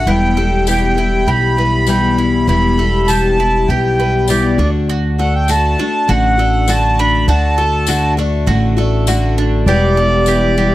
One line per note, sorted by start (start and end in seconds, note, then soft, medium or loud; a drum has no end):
0.00 2.18 A3 soft
0.06 1.23 E1 medium
0.06 0.37 E2 medium
0.06 0.37 B2 medium
0.06 0.38 E3 medium
0.06 0.38 G3 medium
0.06 0.37 B3 medium
0.06 0.37 E4 medium
0.06 0.36 G4 medium
0.06 0.67 G5 medium
0.37 0.66 E3 soft
0.37 0.67 G3 soft
0.37 0.67 B3 soft
0.37 0.67 G4 soft
0.37 0.67 A4 medium
0.67 0.97 E2 medium
0.67 0.97 B2 medium
0.67 0.97 E3 medium
0.67 0.97 G3 medium
0.67 0.96 B3 medium
0.67 0.97 G4 medium
0.67 0.96 G4 medium
0.67 1.30 G5 medium
0.67 tambourine medium
0.97 1.25 E3 soft
0.97 1.25 G3 soft
0.97 1.26 B3 soft
0.97 1.27 E4 medium
0.97 1.27 G4 medium
1.26 2.44 B1 medium
1.26 1.57 E3 soft
1.26 1.57 G3 medium
1.26 1.57 B3 medium
1.26 1.56 G4 medium
1.26 1.57 G4 medium
1.26 2.47 B5 loud
1.57 1.86 E3 soft
1.57 1.86 G3 soft
1.57 1.86 B3 soft
1.57 1.87 G4 medium
1.57 1.88 B4 medium
1.87 2.46 E2 medium
1.87 2.46 B2 medium
1.87 2.46 E3 medium
1.87 2.47 G3 medium
1.87 2.47 B3 medium
1.87 2.48 G4 medium
1.87 2.18 G4 medium
1.87 tambourine medium
2.18 2.48 E4 medium
2.47 3.64 E1 medium
2.47 2.78 E2 medium
2.47 2.78 B2 medium
2.47 2.78 E3 medium
2.47 2.78 G3 medium
2.47 2.77 B3 medium
2.47 2.78 E4 medium
2.47 2.76 G4 medium
2.47 3.10 B5 loud
2.78 3.08 E3 soft
2.78 3.08 G3 soft
2.78 3.08 B3 soft
2.78 3.08 G4 medium
2.78 3.08 A4 medium
3.08 3.38 E2 medium
3.08 3.38 B2 medium
3.08 3.39 E3 medium
3.08 3.38 G3 medium
3.08 3.38 B3 medium
3.08 3.38 G4 medium
3.08 3.37 G4 medium
3.08 3.70 A5 loud
3.08 tambourine medium
3.38 3.68 G3 soft
3.38 3.69 B3 medium
3.38 3.68 E4 medium
3.38 3.68 G4 medium
3.68 4.55 B1 medium
3.68 3.98 E3 medium
3.68 3.99 G3 medium
3.68 3.99 B3 medium
3.68 3.99 G4 medium
3.68 3.98 G4 medium
3.68 4.30 G5 medium
3.99 4.28 E3 soft
3.99 4.28 G3 soft
3.99 4.28 B3 medium
3.99 4.29 G4 soft
3.99 4.28 B4 medium
4.28 4.58 E2 medium
4.28 4.59 B2 medium
4.28 4.59 E3 medium
4.28 4.58 G3 medium
4.28 4.59 B3 medium
4.28 4.58 G4 medium
4.28 4.59 G4 medium
4.28 4.70 D5 medium
4.28 tambourine medium
4.58 5.74 D2 medium
4.58 5.19 D3 soft
4.58 5.19 A3 medium
4.58 4.88 D4 medium
4.58 5.18 D4 medium
4.58 5.17 F#4 medium
4.89 5.18 F#4 medium
5.18 5.48 A3 soft
5.18 5.48 D4 soft
5.18 5.48 F#4 soft
5.18 5.48 A4 medium
5.18 5.35 F#5 medium
5.35 5.50 G5 medium
5.48 5.78 D3 medium
5.48 5.79 A3 medium
5.48 5.78 D4 medium
5.48 5.77 F#4 medium
5.48 5.78 F#4 medium
5.48 6.11 A5 medium
5.48 tambourine medium
5.78 6.07 A3 soft
5.78 6.08 D4 medium
5.78 6.08 D4 soft
5.78 6.08 F#4 medium
6.08 7.24 A1 medium
6.08 6.38 D3 medium
6.08 6.38 A3 medium
6.08 6.37 D4 medium
6.08 6.38 F#4 medium
6.08 6.37 F#4 medium
6.08 6.71 F#5 medium
6.38 6.67 A3 soft
6.38 6.67 D4 soft
6.38 6.67 F#4 soft
6.38 6.68 A4 medium
6.68 7.26 D3 medium
6.68 7.27 A3 medium
6.68 7.27 D4 medium
6.68 7.28 F#4 medium
6.68 6.98 F#4 medium
6.68 7.00 A5 loud
6.68 tambourine loud
6.99 7.28 D4 medium
6.99 7.27 B5 loud
7.28 8.44 D2 medium
7.28 7.58 D3 medium
7.28 7.58 A3 medium
7.28 7.58 D4 medium
7.28 7.58 F#4 medium
7.28 7.57 F#4 medium
7.28 8.14 A5 loud
7.58 7.87 A3 soft
7.58 7.87 D4 soft
7.58 7.88 F#4 medium
7.58 7.87 A4 medium
7.87 8.18 D3 medium
7.87 8.18 A3 medium
7.87 8.17 D4 medium
7.87 8.17 F#4 medium
7.87 8.16 F#4 medium
7.87 tambourine loud
8.17 8.46 A3 soft
8.17 8.47 D4 medium
8.17 8.47 F#4 medium
8.46 9.63 A1 medium
8.46 8.77 D3 medium
8.46 8.77 A3 medium
8.46 8.77 D4 medium
8.46 8.77 F#4 medium
8.46 8.76 F#4 medium
8.77 9.06 A3 soft
8.77 9.07 D4 medium
8.77 9.07 F#4 medium
8.77 9.07 A4 medium
9.07 9.67 D3 medium
9.07 9.67 A3 medium
9.07 9.67 D4 medium
9.07 9.37 F#4 medium
9.07 9.68 F#4 medium
9.07 tambourine loud
9.38 9.67 D4 medium
9.66 10.75 E1 medium
9.66 9.97 E2 medium
9.66 9.97 B2 medium
9.66 10.75 E3 medium
9.66 9.97 E3 medium
9.66 10.75 G3 medium
9.66 9.96 G3 medium
9.66 10.75 B3 medium
9.66 9.96 B3 medium
9.66 10.75 E4 medium
9.66 9.97 G4 medium
9.66 9.95 G4 medium
9.66 10.75 D5 medium
9.96 10.26 E3 soft
9.96 10.26 G3 soft
9.96 10.26 B3 soft
9.96 10.27 G4 soft
9.96 10.26 A4 medium
10.26 10.57 E3 medium
10.26 10.57 G3 medium
10.26 10.57 B3 medium
10.26 10.56 G4 medium
10.26 tambourine loud
10.58 10.75 E3 medium
10.58 10.75 G3 medium
10.58 10.75 B3 medium
10.58 10.75 G4 medium